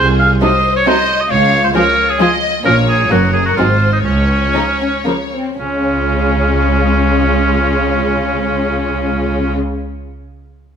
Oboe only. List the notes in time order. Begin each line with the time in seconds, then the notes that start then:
0.20 F5
0.43 D#5
0.77 C#5
0.87 C5
1.21 D#5
1.31 C#5
1.64 C5
1.75 A#4
2.10 G#4
2.22 G#4
2.65 A#4
2.89 G#4
3.11 F#4
3.33 G#4
3.45 F#4
3.57 F4
3.93 D#4
4.04 C#4
5.59 C#4